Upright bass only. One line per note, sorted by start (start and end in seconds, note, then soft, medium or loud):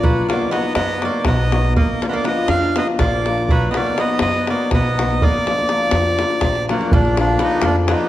0.04 0.20 B1 loud
0.76 1.06 F#2 medium
1.26 1.76 B1 medium
1.76 1.92 A#1 medium
2.48 2.79 F2 medium
2.99 3.50 A#1 medium
3.50 3.65 B1 medium
4.21 4.51 F#2 medium
4.71 5.21 B1 medium
5.21 5.37 A#1 loud
5.92 6.22 F2 medium
6.43 6.73 A#1 medium
6.93 7.35 A#1 loud
7.62 7.92 F2 medium